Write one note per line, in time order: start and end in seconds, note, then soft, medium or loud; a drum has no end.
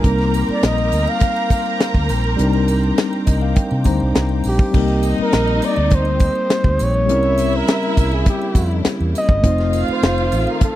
0.00 2.34 G3 medium
0.00 2.35 A#3 medium
0.00 2.34 C4 medium
0.00 0.46 A#4 loud
0.00 4.40 A#4 loud
0.00 4.40 A#5 loud
0.00 4.70 D6 medium
0.04 0.43 C2 loud
0.04 2.36 D#4 medium
0.04 2.36 A#4 medium
0.04 4.70 C5 medium
0.04 4.70 G5 medium
0.04 4.70 A#5 medium
0.04 kick loud
0.04 closed hi-hat medium
0.04 muted triangle medium
0.19 snare soft
0.19 muted triangle soft
0.33 closed hi-hat medium
0.33 triangle medium
0.49 0.67 D5 loud
0.49 muted fingered electric bass stroke soft
0.49 muted triangle soft
0.63 0.89 A#1 loud
0.63 1.11 D#5 loud
0.63 snare loud
0.63 closed hi-hat medium
0.63 muted triangle medium
0.78 muted triangle medium
0.92 1.05 D2 loud
0.92 closed hi-hat medium
0.92 triangle medium
1.07 2.11 F5 loud
1.07 muted triangle medium
1.20 kick loud
1.20 closed hi-hat loud
1.20 muted triangle medium
1.37 muted triangle medium
1.50 kick loud
1.50 closed hi-hat medium
1.50 triangle medium
1.66 muted triangle soft
1.80 snare loud
1.80 closed hi-hat medium
1.80 muted triangle soft
1.94 2.08 D2 loud
1.94 kick medium
1.94 muted triangle medium
2.09 2.35 A#1 loud
2.09 closed hi-hat medium
2.09 triangle medium
2.24 muted triangle soft
2.36 2.91 C2 loud
2.36 3.81 G3 medium
2.36 3.82 C4 medium
2.36 3.83 D4 medium
2.36 3.83 D#4 medium
2.36 closed hi-hat loud
2.36 muted triangle soft
2.42 3.84 A#4 medium
2.53 muted triangle medium
2.68 closed hi-hat medium
2.68 triangle medium
2.83 muted triangle soft
2.98 snare loud
2.98 closed hi-hat medium
2.98 muted triangle medium
3.13 muted triangle medium
3.26 3.53 C2 loud
3.26 3.40 D#5 medium
3.26 kick medium
3.26 closed hi-hat loud
3.26 triangle medium
3.41 3.56 F5 medium
3.41 muted triangle soft
3.56 3.83 G5 medium
3.56 kick loud
3.56 closed hi-hat loud
3.56 muted triangle medium
3.71 3.84 C3 medium
3.71 muted triangle medium
3.84 3.99 D2 medium
3.84 4.70 G3 medium
3.84 4.71 C4 medium
3.84 4.74 D4 medium
3.84 4.74 D#4 medium
3.84 4.75 C5 medium
3.84 4.13 A#5 medium
3.84 kick medium
3.84 closed hi-hat medium
3.84 triangle medium
4.00 4.14 C2 medium
4.00 muted triangle soft
4.15 4.41 C2 medium
4.15 4.70 A#5 medium
4.15 snare loud
4.15 closed hi-hat medium
4.15 muted triangle soft
4.29 muted triangle soft
4.44 4.58 A#1 medium
4.44 5.16 G4 loud
4.44 open hi-hat medium
4.44 triangle medium
4.59 kick loud
4.59 muted triangle soft
4.71 5.13 C2 loud
4.71 7.03 G3 medium
4.71 7.05 A#3 medium
4.71 9.40 A#3 medium
4.71 7.04 C4 medium
4.71 7.07 C4 medium
4.71 6.75 D#4 loud
4.71 7.06 D#4 medium
4.71 7.05 D#4 medium
4.71 7.07 G4 medium
4.71 6.76 D#5 loud
4.71 kick loud
4.71 crash loud
4.71 muted triangle medium
4.76 7.06 A#4 medium
4.88 muted triangle medium
5.03 closed hi-hat medium
5.03 triangle medium
5.18 5.66 A#4 loud
5.18 muted fingered electric bass stroke medium
5.18 muted triangle soft
5.32 5.59 A#1 loud
5.32 snare loud
5.32 closed hi-hat loud
5.32 muted triangle medium
5.47 muted triangle medium
5.62 5.96 D5 loud
5.62 closed hi-hat medium
5.62 triangle medium
5.76 6.28 D2 loud
5.76 muted triangle medium
5.91 kick loud
5.91 closed hi-hat loud
5.91 muted triangle medium
5.95 6.85 C5 loud
6.05 muted triangle medium
6.20 kick loud
6.20 closed hi-hat medium
6.20 triangle medium
6.35 muted triangle soft
6.50 snare loud
6.50 closed hi-hat medium
6.50 muted triangle soft
6.64 6.77 D2 loud
6.64 kick loud
6.64 muted triangle medium
6.79 7.09 A#1 loud
6.79 7.58 C#5 loud
6.79 closed hi-hat medium
6.79 triangle medium
6.94 muted triangle soft
7.06 7.60 C2 loud
7.06 9.38 G3 medium
7.06 9.39 C4 medium
7.06 9.39 C#4 medium
7.06 9.10 E4 loud
7.06 9.41 E4 medium
7.06 9.10 E5 loud
7.06 closed hi-hat medium
7.06 muted triangle soft
7.10 9.42 C#3 medium
7.10 9.42 G3 medium
7.10 9.40 E4 medium
7.10 9.41 A#4 medium
7.23 muted triangle medium
7.38 closed hi-hat medium
7.38 triangle medium
7.56 8.15 A#4 loud
7.68 snare loud
7.68 closed hi-hat loud
7.68 muted triangle medium
7.83 muted triangle medium
7.97 8.23 C2 medium
7.97 kick medium
7.97 closed hi-hat medium
7.97 triangle medium
8.12 8.27 G#4 medium
8.12 muted triangle soft
8.26 8.84 G4 medium
8.26 kick loud
8.26 closed hi-hat loud
8.26 muted triangle medium
8.42 muted triangle medium
8.55 8.81 F2 medium
8.55 kick loud
8.55 closed hi-hat medium
8.55 triangle medium
8.71 muted triangle soft
8.85 muted fingered electric bass stroke soft
8.85 snare loud
8.85 closed hi-hat medium
8.85 muted triangle soft
9.00 9.13 E2 medium
9.00 muted triangle soft
9.15 9.85 D#5 loud
9.15 closed hi-hat medium
9.15 triangle medium
9.29 9.42 G1 loud
9.29 kick loud
9.41 9.82 F1 loud
9.41 10.76 D#3 medium
9.41 10.76 F3 medium
9.41 10.76 A3 medium
9.41 10.76 C4 medium
9.41 10.76 D#4 medium
9.41 10.76 F4 medium
9.41 10.76 F4 loud
9.41 10.76 F5 loud
9.41 kick loud
9.41 closed hi-hat loud
9.41 muted triangle medium
9.45 10.76 F4 medium
9.45 10.76 C5 medium
9.58 snare soft
9.58 muted triangle soft
9.73 closed hi-hat medium
9.73 triangle medium
9.88 10.51 C5 loud
9.88 muted fingered electric bass stroke medium
9.88 muted triangle soft
10.03 10.28 F1 medium
10.03 snare loud
10.03 closed hi-hat medium
10.03 muted triangle medium
10.18 muted triangle medium
10.32 10.45 A1 medium
10.32 closed hi-hat medium
10.32 triangle medium
10.47 10.62 A#4 medium
10.47 muted triangle medium
10.61 10.76 A4 loud
10.61 kick loud
10.61 closed hi-hat loud
10.61 muted triangle medium